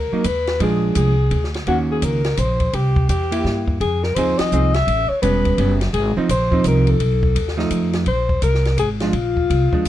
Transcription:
Already playing: D2 A#4
0.12 F#3 A#3 D#4, muted upright bass stroke
0.24 D#2 B4, kick, hi-hat pedal, ride
0.47 snare, ride
0.60 A#1 F3 G#3 D4 G#4, kick, ride
0.95 C2 G#4, kick, hi-hat pedal, ride
1.31 D2, kick, ride
1.44 snare
1.54 snare, ride
1.67 D#2 D#3 A#3 C#4 F#4, kick, ride
1.91 G#4
2.02 C#2 A#4, kick, hi-hat pedal, ride
2.24 snare, ride
2.37 A#1 C5, kick, hi-hat pedal, ride
2.60 kick, ride
2.73 C2 G4, kick, ride
2.96 kick
3.09 E2 G4, kick, hi-hat pedal, ride
3.31 A#3 E4 G4, ride
3.44 G2, kick, snare
3.68 kick
3.80 F2 G#4, kick, ride
4.03 A#4, snare
4.15 D#2 F3 C4 D#4 G#4 C5, kick, hi-hat pedal, ride
4.38 D#5, muted upright bass stroke, snare, ride
4.52 C2 F3 C4 D#4 G#4, hi-hat pedal
4.74 E5, snare, ride
4.87 A1, kick, ride
5.09 C#5, muted upright bass stroke
5.22 E1 G3 B3 C#4 B4, kick, hi-hat pedal, ride
5.45 kick, ride
5.58 F#1 G3 B3 C#4, kick, ride
5.81 snare, ride
5.93 G#1 G#4, kick, ride
6.17 F3 C4 D#4, muted upright bass stroke
6.29 A#1 C5, kick, hi-hat pedal, ride
6.52 F3 C4 D#4, kick
6.64 C2 A#4, kick, hi-hat pedal, ride
6.87 A4, ride
7.00 B1, kick, ride
7.23 kick
7.35 D#2, kick, ride
7.48 snare
7.57 F3 A3 D#4, snare
7.71 F2, kick, hi-hat pedal, ride
7.93 snare, ride
8.06 A#1 C5, kick, ride
8.29 kick
8.42 C2 A#4, kick, hi-hat pedal, ride
8.55 snare
8.65 snare, ride
8.77 G#1 G#4, kick, hi-hat pedal, ride
9.00 F3 G#3 D4 F4, snare, ride
9.13 A#1, kick, ride
9.37 kick
9.50 C2, kick, ride
9.73 F3 G#3 D4, kick
9.85 kick, hi-hat pedal, ride

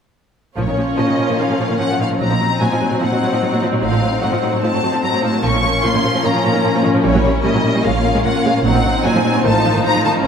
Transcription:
0.57 A#1 A#2 F3 C#4 F4 A#4 C#5
0.67 A#2 D#3
0.77 A#2 F3 C#4
0.97 A#2 F3 C#5 D#5
1.08 A#2 D#3
1.18 A#2 F3 F4
1.29 A#2 F3
1.39 A#2 D#3 F3 F5
1.49 A#2 F3
1.59 A#2 F3 C#4
1.70 A#2 D#3
1.78 A#2 F3 C#5 F#5
1.90 A#2 F3
1.99 A#2 D#3 F4 F5
2.10 A#2 F3
2.18 A#1 A#2 F#3 C4 D#4 C5
2.22 A#5
2.30 A#2 F3
2.40 A#2 F#3 C4
2.60 A#2 F#3 D#5 G#5
2.72 A#2 F3
2.81 A#2 F#3 F#4
2.91 A#2 F#3
3.01 A#2 F3 F#5
3.12 A#2 F#3
3.21 A#2 F#3 C4
3.32 A#2 F3
3.42 A#2 F#3 D#5
3.52 A#2 F#3
3.62 A#2 F3 F#4
3.72 A#2 F#3
3.81 A1 A2 F#3 F5
3.92 A2 F3
4.02 A2 F#3 C4
4.22 A2 F#3 D#5 F#5
4.32 A2 F3
4.42 A2 F#3 D#4
4.52 A2 F#3
4.63 A2 F3 A3 A5
4.73 A2 F#3
4.83 A2 F#3 C4
4.93 A2 F3
5.02 A2 F#3 D#5 A#5
5.12 A2 F#3
5.22 A2 F3 D#4 A5
5.32 A2 F#3
5.43 A#1 A#2 F3 C#4 F4 A#4 C#6
5.53 A#2 D#3
5.63 A#2 F3 C#4
5.84 A#2 F3 A#4 C6
5.94 A#2 D#3
6.04 A#2 F3 F4
6.14 A#2 F3
6.23 A#2 D#3 F3 A#5
6.34 A#2 F3
6.44 A#2 F3 C#4
6.54 A#2 D#3
6.63 A#2 F3 A#4
6.74 A#2 F3
6.84 A#2 D#3 F4
6.94 A#2 F3
7.03 A#1 A#2 G3 E4 C#5
7.13 A#2 F#3
7.24 A#2 G3 C#4
7.44 A#2 G3 G4 D#5
7.54 A#2 F#3
7.64 A#2 G3 E4
7.74 A#2 G3
7.84 A#1 A#2 G#3 F4 F5
7.94 A#2 A#3
8.04 A#2 A#3 C#4
8.14 A#2 G#3
8.24 A#2 A#3 A#4 F#5
8.34 A#2 A#3
8.44 A#2 G#3 F4 F5
8.55 A#2 A#3
8.64 A#1 A#2 F#3 C4 D#4 C5 F#5
8.74 A#2 F3
8.84 A#2 F#3 C4
9.04 A#2 F#3 C5 G#5
9.15 A#2 F3
9.24 A#2 F#3 D#4
9.35 A#2 F#3
9.43 A1 A2 D#3 D#4 F4 A5
9.54 A2 F3
9.64 A2 F3 D#4
9.74 A2 D#3
9.84 A2 F3 C5 A#5
9.94 A2 F3
10.04 A2 D#3 F4 A5
10.14 A2 F3

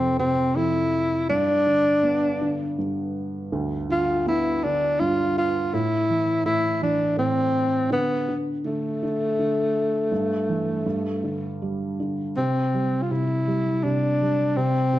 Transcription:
Already playing: F2 C3 C4
0.19 C3 C4
0.56 F2 E4
1.29 G2 D4
1.67 D3
2.03 B3
2.41 D3
2.78 G2
3.52 D2
3.90 D3 F4
4.26 B3 E4
4.64 D3 D4
5.00 G2 F4
5.38 F4
5.73 A2 E4
6.10 E3
6.46 A2 E4
6.82 E3 D4
7.17 A2 C4
7.91 D3 B3
8.28 D3
8.65 D3 A3
9.03 D3
9.39 D3
10.12 G2
10.49 E3
10.86 G2
11.23 D3
11.62 G3
12.00 D3
12.37 C3 C4
12.74 G3
13.02 F4
13.11 C3 E4
13.47 G3
13.83 C3 D4
14.22 G3
14.57 C3 C4
14.93 C3

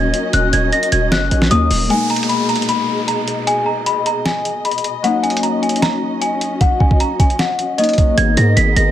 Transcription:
Already playing: D#1 F#3 A#3 C#4 D#4 F#4 A#4 D#5 G#6
0.14 closed hi-hat
0.33 D#1 F#6, closed hi-hat
0.53 D#1 G#6, closed hi-hat
0.72 A#6, closed hi-hat
0.83 closed hi-hat
0.92 D#1 G#6, closed hi-hat
1.12 F#1 F#6, snare, closed hi-hat
1.31 A#1, closed hi-hat
1.42 snare
1.50 D#2 F#3 A#3 C#4 D#4 D#6, closed hi-hat
1.71 D#1, open hi-hat
1.88 B2 G#3 A#3 B3 D#4 G#4 D#5 G#5, closed hi-hat, downlifter
2.10 A#5, closed hi-hat
2.16 closed hi-hat
2.23 closed hi-hat
2.29 B5, closed hi-hat
2.49 A#5, closed hi-hat
2.56 closed hi-hat
2.62 closed hi-hat
2.69 B5, closed hi-hat
3.08 A#5, closed hi-hat
3.28 closed hi-hat
3.47 G#5, closed hi-hat
3.66 A#5
3.86 B5, closed hi-hat
4.06 A#5, closed hi-hat
4.25 G#5, snare, closed hi-hat
4.45 closed hi-hat
4.65 B5, closed hi-hat
4.71 closed hi-hat
4.78 closed hi-hat
4.84 closed hi-hat
5.02 F#3 A#3 C#4 D#4 F#4 F#5, closed hi-hat
5.23 G#5, closed hi-hat
5.30 closed hi-hat
5.37 closed hi-hat
5.43 A#5, closed hi-hat
5.62 G#5, closed hi-hat
5.69 closed hi-hat
5.76 closed hi-hat
5.82 A#5, snare, closed hi-hat
6.21 G#5, closed hi-hat
6.41 closed hi-hat
6.61 F#5, kick, closed hi-hat
6.80 G#5, kick
6.91 kick
7.00 A#5, closed hi-hat
7.20 G#5, kick, closed hi-hat
7.30 closed hi-hat
7.39 F#5, snare, closed hi-hat
7.59 closed hi-hat
7.78 F#3 A#3 C#4 D#4 D#5, closed hi-hat
7.84 closed hi-hat
7.89 closed hi-hat
7.93 closed hi-hat
7.98 kick, closed hi-hat
8.18 G#1 B3 G#4 A#4 D#5 G#6, closed hi-hat
8.37 G#2 A#6, closed hi-hat
8.57 G#1 B6, closed hi-hat
8.76 G#1 A#6, closed hi-hat

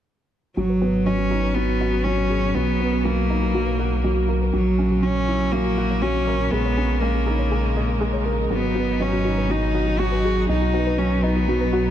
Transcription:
0.57 G#1 B2 F#3 F#4
0.66 F#3 B4
0.81 B3 F#4
1.06 F#3 C#4 D#5
1.18 F#4
1.31 D#4 F#4
1.43 D#4 G#4 B4
1.55 F#3 B3 F#4
1.81 F#4 D#5
1.93 F#4
2.04 F#3 C#4 F#4
2.18 B4
2.30 F#4 G#4
2.55 B1 F#3 B3 D#5
2.68 F#4
2.80 B3 F#4
2.93 B4
3.05 F#3 A#3 F#4
3.30 D#4 D#5
3.42 F#4 A#4
3.54 F#3 F#4
3.66 B4
3.79 F#4
4.04 F#3 D#5
4.16 F#4
4.29 F#4 A#4
4.42 B4
4.53 A#1 C#3 F#3 F#4
4.78 C#4 E5
4.92 F#4
5.03 F#3 C#4 F#4
5.16 C#5
5.28 E4 F#4
5.43 E4
5.52 F#3 A#3 E5
5.66 F#4
5.78 F#4
5.91 C#5
6.02 F#3 C#4 F#4
6.27 A#4 E5
6.40 F#4
6.51 A#1 G#3 B3 G#4
6.65 C#5
6.77 C#4 G#4
6.94 G#3
7.01 G#3 A#3 D#5
7.14 G#4
7.26 D#4 G#4
7.39 D#4 C#5
7.51 G#3 G#4
7.76 G#4 D#5
7.89 G#4
8.01 G#3 G#4
8.13 C#5
8.26 G#4 A#4
8.50 G#1 B2 F#3 B3 F#4
8.62 B4
8.75 B3 F#4
9.00 F#3 C#4 D#5
9.13 F#3 F#4
9.25 D#4 F#4
9.38 G#4 B4
9.50 F#3 D#4 F#4
9.75 F#4 D#5
9.87 F#4
9.99 F#3 F#4
10.12 B4
10.24 F#4 G#4
10.49 B1 F#3 D#4 D#5
10.62 F#4
10.74 B3 F#4
10.87 B4
10.98 F#3 C#4 F#4
11.05 A#4
11.23 B3 D#4 D#5
11.36 F#4
11.48 F#3 F#4
11.61 B4
11.73 F#4

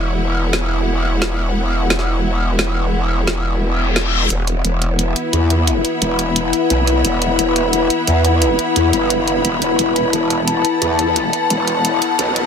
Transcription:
Already playing: E1 B3 E4 B4 E5 F#5
0.53 snare
1.22 snare
1.90 snare
1.99 snare
2.59 snare
3.27 snare
3.62 reverse cymbal
3.96 snare
4.30 E1 B3 E4 B4 F#5, closed hi-hat
4.47 closed hi-hat
4.52 E4
4.64 E1, closed hi-hat
4.82 closed hi-hat
4.99 E5, closed hi-hat
5.16 closed hi-hat
5.30 E2 B5, closed hi-hat
5.50 closed hi-hat
5.67 closed hi-hat
5.85 closed hi-hat
6.02 E1, closed hi-hat
6.19 closed hi-hat
6.36 closed hi-hat
6.53 closed hi-hat
6.70 B1, closed hi-hat
6.87 closed hi-hat
7.05 E1, closed hi-hat
7.22 closed hi-hat
7.39 E1, closed hi-hat
7.56 closed hi-hat
7.73 closed hi-hat
7.90 closed hi-hat
8.07 E2, closed hi-hat
8.25 closed hi-hat
8.42 closed hi-hat
8.59 closed hi-hat
8.76 E2, closed hi-hat
8.93 G1, closed hi-hat
9.10 closed hi-hat
9.28 closed hi-hat
9.45 E1, closed hi-hat
9.62 E1, closed hi-hat
9.79 E1 A5, closed hi-hat, riser
9.96 closed hi-hat
10.13 E1, closed hi-hat
10.30 closed hi-hat
10.48 F#5, closed hi-hat
10.65 closed hi-hat
10.82 E2, closed hi-hat
10.99 closed hi-hat
11.16 closed hi-hat
11.33 closed hi-hat
11.50 E1, closed hi-hat
11.68 closed hi-hat
11.85 closed hi-hat
12.02 closed hi-hat
12.19 B1, closed hi-hat
12.36 closed hi-hat

